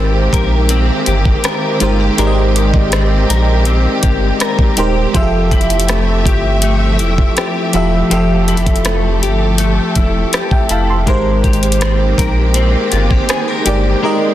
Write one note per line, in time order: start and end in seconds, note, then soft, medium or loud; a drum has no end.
0.00 0.29 G#1 loud
0.00 5.10 D#3 medium
0.00 0.52 G#3 medium
0.00 2.17 G#3 medium
0.00 5.10 G#3 medium
0.00 5.10 A#3 medium
0.00 0.70 C4 medium
0.00 11.03 C4 medium
0.00 0.53 D#4 medium
0.00 0.53 G4 medium
0.00 1.06 G4 medium
0.00 11.03 G4 medium
0.00 0.32 A#4 medium
0.00 0.53 A#4 medium
0.00 0.54 C5 medium
0.00 5.16 E5 soft
0.00 5.16 G5 medium
0.33 0.91 A#1 medium
0.33 1.43 A#4 medium
0.33 kick loud
0.33 closed hi-hat medium
0.69 2.92 C4 medium
0.69 closed hi-hat medium
1.06 1.36 G1 medium
1.06 1.81 G4 medium
1.06 closed hi-hat medium
1.25 kick medium
1.44 2.18 A#4 medium
1.44 cross-stick loud
1.44 closed hi-hat medium
1.80 2.10 G1 medium
1.80 2.13 G#3 medium
1.80 2.14 D#4 medium
1.80 2.00 F4 medium
1.80 2.14 G4 medium
1.80 2.14 A#4 medium
1.80 2.15 C5 medium
1.80 closed hi-hat medium
2.00 2.54 G4 medium
2.18 3.25 G#1 loud
2.18 3.49 G#3 medium
2.18 5.15 G#3 medium
2.18 3.49 D#4 medium
2.18 3.50 G4 medium
2.18 3.28 A#4 medium
2.18 3.50 A#4 medium
2.18 2.26 D5 medium
2.18 closed hi-hat medium
2.27 3.54 D#5 medium
2.55 4.03 G4 medium
2.55 closed hi-hat medium
2.74 kick medium
2.92 3.66 C4 medium
2.92 cross-stick loud
2.92 closed hi-hat medium
3.29 3.87 A#1 medium
3.29 4.39 A#4 medium
3.29 closed hi-hat medium
3.65 5.52 C4 medium
3.65 closed hi-hat medium
4.03 4.32 G1 medium
4.03 4.77 G4 medium
4.03 kick medium
4.03 closed hi-hat medium
4.40 5.22 A#4 medium
4.40 cross-stick loud
4.40 closed hi-hat medium
4.59 kick medium
4.76 5.06 D#1 medium
4.76 5.10 G#3 medium
4.76 5.10 D#4 medium
4.76 5.15 G4 medium
4.76 5.10 G4 medium
4.76 5.11 A#4 medium
4.76 5.11 C5 medium
4.76 closed hi-hat medium
5.14 6.27 F1 loud
5.14 6.45 F3 medium
5.14 11.03 F3 medium
5.14 8.10 F3 medium
5.14 11.03 A3 medium
5.14 6.45 F4 medium
5.14 6.46 G4 medium
5.14 6.25 G4 medium
5.14 5.22 G#4 medium
5.14 8.08 E5 medium
5.14 6.47 E5 medium
5.14 kick loud
5.14 closed hi-hat medium
5.22 6.49 A4 medium
5.51 6.99 E4 medium
5.51 kick medium
5.51 closed hi-hat soft
5.61 closed hi-hat soft
5.70 closed hi-hat medium
5.80 closed hi-hat medium
5.88 6.62 A3 medium
5.88 cross-stick loud
5.88 closed hi-hat medium
6.26 7.02 G1 medium
6.26 7.37 G4 medium
6.26 kick medium
6.26 closed hi-hat medium
6.62 8.84 A3 medium
6.62 closed hi-hat medium
6.99 7.29 E1 medium
6.99 7.73 E4 medium
6.99 closed hi-hat medium
7.18 kick medium
7.37 8.11 G4 medium
7.37 cross-stick loud
7.37 closed hi-hat medium
7.73 8.03 E1 medium
7.73 8.06 F3 medium
7.73 8.47 E4 medium
7.73 8.07 F4 medium
7.73 8.07 G4 medium
7.73 8.07 A4 medium
7.73 8.08 E5 medium
7.73 closed hi-hat medium
8.10 9.24 F1 loud
8.10 9.41 F3 medium
8.10 11.07 F3 medium
8.10 9.42 F4 medium
8.10 9.42 G4 medium
8.10 9.22 G4 medium
8.10 11.04 A4 medium
8.10 9.42 A4 medium
8.10 9.43 E5 medium
8.10 closed hi-hat medium
8.48 9.95 E4 medium
8.48 closed hi-hat soft
8.57 closed hi-hat soft
8.66 kick medium
8.66 closed hi-hat medium
8.76 closed hi-hat medium
8.85 9.58 A3 medium
8.85 cross-stick loud
8.85 closed hi-hat medium
9.22 9.80 G1 medium
9.22 10.33 G4 medium
9.22 closed hi-hat medium
9.58 11.07 A3 medium
9.58 closed hi-hat medium
9.95 10.25 E1 medium
9.95 10.69 E4 medium
9.95 kick medium
9.95 closed hi-hat medium
10.33 11.44 G4 medium
10.33 cross-stick loud
10.33 closed hi-hat medium
10.51 10.70 E5 medium
10.51 10.69 G5 medium
10.51 kick loud
10.69 11.09 F1 medium
10.69 11.15 E4 medium
10.69 10.88 F5 medium
10.69 10.88 A5 medium
10.69 closed hi-hat medium
10.90 11.25 A5 soft
10.90 11.24 C6 medium
11.06 12.14 G#1 loud
11.06 14.34 D#3 medium
11.06 12.38 G#3 medium
11.06 14.34 G#3 medium
11.06 14.02 G#3 medium
11.06 14.34 A#3 medium
11.06 14.34 C4 medium
11.06 12.38 D#4 medium
11.06 14.34 G4 medium
11.06 12.38 G4 medium
11.06 12.17 A#4 medium
11.06 12.39 A#4 medium
11.06 12.39 C5 medium
11.06 kick loud
11.06 closed hi-hat medium
11.44 12.92 G4 medium
11.44 kick medium
11.44 closed hi-hat soft
11.53 closed hi-hat soft
11.63 closed hi-hat medium
11.72 closed hi-hat medium
11.81 12.55 C4 medium
11.81 cross-stick loud
11.81 closed hi-hat medium
12.18 12.76 A#1 medium
12.18 13.29 A#4 medium
12.18 kick loud
12.18 closed hi-hat medium
12.54 14.34 C4 medium
12.54 closed hi-hat medium
12.92 13.21 G1 medium
12.92 13.11 F4 medium
12.92 closed hi-hat medium
13.11 13.65 G4 medium
13.11 kick medium
13.29 13.48 G#4 medium
13.29 cross-stick loud
13.29 closed hi-hat medium
13.48 14.03 A#4 medium
13.65 13.95 G1 medium
13.65 13.98 G#3 medium
13.65 13.99 D#4 medium
13.65 14.34 G4 medium
13.65 13.99 G4 medium
13.65 14.00 A#4 medium
13.65 14.00 D5 medium
13.65 closed hi-hat medium
14.02 14.34 G#3 medium
14.02 14.34 D#4 medium
14.02 14.34 G4 medium
14.02 14.34 A#4 medium
14.02 14.34 D#5 medium